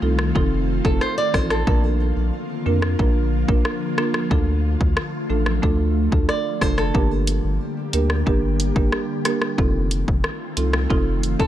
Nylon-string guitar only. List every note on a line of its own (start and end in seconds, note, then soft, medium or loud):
0.85 1.00 A4 medium
1.01 1.17 C5 medium
1.18 1.34 D5 medium
1.34 1.50 C5 medium
1.51 1.82 A4 medium
6.29 6.62 D5 medium
6.62 6.77 C5 medium
6.78 7.09 A4 medium
11.40 11.47 A4 medium